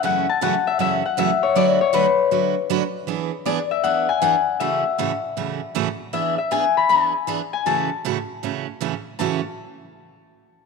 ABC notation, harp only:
X:1
M:4/4
L:1/8
Q:"Swing" 1/4=157
K:A
V:1 name="Harp"
f a f e e f e c | d c B4- B z | z2 d e f g f2 | e6- e z |
e e g b g3 g | a6 z2 | a z6 z |]